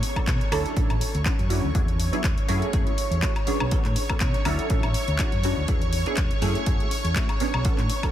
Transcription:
Already playing: string machine C#5 C#6
0.03 open hi-hat
0.16 analog polysynth F#3 B3 C#4 D4 A4, muted fingered electric bass stroke, kick, closed hi-hat, high woodblock
0.27 fingered electric bass B2, kick, clap, closed hi-hat
0.41 closed hi-hat
0.52 fingered electric bass D2, analog polysynth F#3 C#4 D4 E4 A4, open hi-hat, high woodblock
0.66 closed hi-hat
0.76 fingered electric bass A1, analog polysynth F#3 C#4 D4 E4 A4, kick, closed hi-hat
0.90 fingered electric bass A1, closed hi-hat, high woodblock
1.01 open hi-hat
1.15 fingered electric bass D2, closed hi-hat
1.25 analog polysynth F#3 C#4 D4 E4 F#4, kick, clap, closed hi-hat
1.39 fingered electric bass F#2, closed hi-hat
1.50 analog polysynth F#3 C#4 D4 E4 F#4, open hi-hat
1.64 fingered electric bass D2
1.75 fingered electric bass E2, analog polysynth F#3 B3 D4 E4 G#4, string machine C#5 C#6, kick, closed hi-hat
1.88 closed hi-hat
2.00 open hi-hat
2.12 analog polysynth F#3 B3 D4 E4 G#4, closed hi-hat
2.24 fingered electric bass E1, kick, clap, closed hi-hat
2.38 closed hi-hat
2.48 fingered electric bass F#2, analog polysynth F#3 A3 C#4 E4 G#4, open hi-hat
2.62 closed hi-hat
2.73 fingered electric bass F#1, analog polysynth F#3 A3 C#4 E4 G#4, kick, closed hi-hat
2.87 closed hi-hat
2.98 open hi-hat
3.11 fingered electric bass E2, closed hi-hat
3.22 analog polysynth F#3 A3 C#4 E4 F#4, kick, clap, closed hi-hat
3.36 closed hi-hat, high woodblock
3.47 analog polysynth F#3 B3 C#4 D4 G#4, muted fingered electric bass stroke, open hi-hat
3.60 fingered electric bass B1, high woodblock
3.71 analog polysynth F#3 B3 C#4 D4 A4, kick, closed hi-hat
3.85 fingered electric bass A2, clap, closed hi-hat
3.96 open hi-hat
4.10 analog polysynth F#3 B3 C#4 D4 A4, muted fingered electric bass stroke, kick, closed hi-hat, high woodblock
4.20 fingered electric bass B2, kick, clap, closed hi-hat
4.34 closed hi-hat
4.45 fingered electric bass D2, analog polysynth F#3 C#4 D4 E4 A4, open hi-hat, high woodblock
4.59 closed hi-hat
4.70 fingered electric bass A1, analog polysynth F#3 C#4 D4 E4 A4, kick, closed hi-hat
4.83 fingered electric bass A1, closed hi-hat, high woodblock
4.94 open hi-hat
5.08 fingered electric bass D2, closed hi-hat
5.19 analog polysynth F#3 C#4 D4 E4 F#4, kick, clap, closed hi-hat
5.32 fingered electric bass F#2, closed hi-hat
5.44 analog polysynth F#3 C#4 D4 E4 F#4, open hi-hat
5.57 fingered electric bass D2
5.68 analog polysynth F#3 B3 D4 E4 G#4, kick, closed hi-hat
5.82 closed hi-hat
5.93 open hi-hat
6.06 analog polysynth F#3 B3 D4 E4 G#4, muted fingered electric bass stroke, closed hi-hat
6.17 fingered electric bass E1, kick, clap, closed hi-hat
6.31 closed hi-hat
6.42 fingered electric bass F#2, analog polysynth F#3 A3 C#4 E4 G#4, open hi-hat
6.55 closed hi-hat
6.66 fingered electric bass F#1, analog polysynth F#3 A3 C#4 E4 G#4, kick, closed hi-hat
6.80 closed hi-hat
6.91 open hi-hat
7.04 fingered electric bass E2, closed hi-hat
7.16 analog polysynth F#3 A3 C#4 E4 F#4, kick, clap, closed hi-hat
7.29 closed hi-hat, high woodblock
7.40 analog polysynth F#3 B3 C#4 D4 G#4, muted fingered electric bass stroke, open hi-hat
7.54 fingered electric bass B1, high woodblock
7.65 analog polysynth F#3 B3 C#4 D4 A4, muted fingered electric bass stroke, kick, closed hi-hat
7.78 fingered electric bass A2, clap, closed hi-hat
7.90 open hi-hat
8.03 analog polysynth F#3 B3 C#4 D4 A4, muted fingered electric bass stroke, kick, closed hi-hat, high woodblock

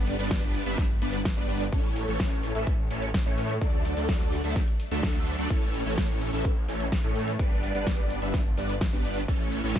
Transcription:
Already playing: detuned saw bass G1, supersaw synth G3 B3 D4 B4 D5
0.07 open hi-hat, shaker
0.19 detuned saw bass G1, supersaw synth G3 B3 D4 B4 D5, closed hi-hat, shaker
0.31 kick, snare, closed hi-hat, shaker
0.43 closed hi-hat
0.54 open hi-hat, shaker
0.66 detuned saw bass G1, supersaw synth G3 B3 D4 B4 E5, closed hi-hat, shaker
0.78 kick, snare, closed hi-hat, shaker
1.02 detuned saw bass G1, supersaw synth G3 B3 D4 B4 D5, open hi-hat, shaker
1.13 closed hi-hat, shaker
1.25 kick, snare, closed hi-hat, shaker
1.37 detuned saw bass G1, supersaw synth G3 B3 D4 B4 D5, closed hi-hat
1.49 open hi-hat, shaker
1.61 closed hi-hat, shaker
1.72 detuned saw bass A1, supersaw synth E3 A3 C#4 A4 C#5, kick, closed hi-hat, shaker
1.96 open hi-hat, shaker
2.08 detuned saw bass A1, supersaw synth E3 A3 C#4 A4 C#5, closed hi-hat, shaker
2.20 kick, snare, closed hi-hat, shaker
2.32 closed hi-hat
2.43 open hi-hat, shaker
2.55 detuned saw bass A1, supersaw synth E3 A3 C#4 A4 E5, closed hi-hat, shaker
2.67 kick, closed hi-hat, shaker
2.91 detuned saw bass A1, supersaw synth E3 A3 C#4 A4 C#5, open hi-hat, shaker
3.02 closed hi-hat, shaker
3.14 kick, snare, closed hi-hat, shaker
3.26 detuned saw bass A2, supersaw synth E3 A3 C#4 A4 C#5, closed hi-hat
3.38 open hi-hat, shaker
3.50 closed hi-hat, shaker
3.61 detuned saw bass D2, supersaw synth F#3 A3 D4 A4 D5, kick, closed hi-hat, shaker
3.85 open hi-hat, shaker
3.97 detuned saw bass D2, supersaw synth F#3 A3 D4 A4 D5, closed hi-hat, shaker
4.09 kick, snare, closed hi-hat, shaker
4.20 closed hi-hat
4.32 open hi-hat, shaker
4.44 detuned saw bass D2, supersaw synth F#3 A3 D4 A4 E5, closed hi-hat, shaker
4.56 kick, snare, closed hi-hat, shaker
4.68 closed hi-hat
4.80 open hi-hat, shaker
4.91 detuned saw bass D2, supersaw synth F#3 A3 D4 A4 E5, closed hi-hat, shaker
5.03 kick, snare, closed hi-hat, shaker
5.15 closed hi-hat
5.27 open hi-hat, shaker
5.39 detuned saw bass D2, supersaw synth F#3 A3 D4 A4 D5, closed hi-hat, shaker
5.50 detuned saw bass A1, supersaw synth E3 A3 C#4 A4 C#5, kick, closed hi-hat, shaker
5.74 open hi-hat, shaker
5.86 detuned saw bass A1, supersaw synth E3 A3 C#4 A4 C#5, closed hi-hat, shaker
5.98 kick, snare, closed hi-hat, shaker
6.09 closed hi-hat
6.21 open hi-hat, shaker
6.33 detuned saw bass A1, supersaw synth E3 A3 C#4 A4 E5, closed hi-hat, shaker
6.45 kick, closed hi-hat, shaker
6.68 detuned saw bass A1, supersaw synth E3 A3 C#4 A4 C#5, open hi-hat, shaker
6.80 closed hi-hat, shaker
6.92 kick, snare, closed hi-hat, shaker
7.04 detuned saw bass A2, supersaw synth E3 A3 C#4 A4 C#5, closed hi-hat
7.16 open hi-hat, shaker
7.28 closed hi-hat, shaker
7.39 detuned saw bass G1, supersaw synth G3 B3 D4 B4 D5, kick, closed hi-hat, shaker
7.63 open hi-hat, shaker
7.75 detuned saw bass G1, supersaw synth G3 B3 D4 B4 D5, closed hi-hat, shaker
7.87 kick, snare, closed hi-hat, shaker
7.98 closed hi-hat
8.10 open hi-hat, shaker
8.22 detuned saw bass G1, supersaw synth G3 B3 D4 B4 E5, closed hi-hat, shaker
8.34 kick, snare, closed hi-hat, shaker
8.57 detuned saw bass G1, supersaw synth G3 B3 D4 B4 D5, open hi-hat, shaker
8.69 closed hi-hat, shaker
8.81 kick, snare, closed hi-hat, shaker
8.93 detuned saw bass G1, supersaw synth G3 B3 D4 B4 D5, closed hi-hat
9.05 open hi-hat, shaker
9.17 closed hi-hat, shaker
9.28 detuned saw bass A1, supersaw synth E3 A3 C#4 A4 C#5, kick, closed hi-hat, shaker
9.52 open hi-hat, shaker
9.64 detuned saw bass A1, supersaw synth E3 A3 C#4 A4 C#5, closed hi-hat, shaker
9.76 kick, snare, closed hi-hat, shaker

